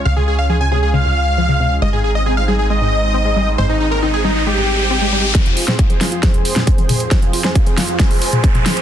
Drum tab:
HH |----------------|----------------|----------------|xxoxxxoxxxoxxxox|
SD |----------------|----------------|----------------|o--o--o-o--o----|
T2 |----------------|----------------|----------------|---o-------o--o-|
BD |----------------|----------------|----------------|o---o---o---o---|

HH |xxo-xxoxxooxxxox|
SD |o--o--o-o-----o-|
T2 |-----------o-o--|
BD |o---o---o---o---|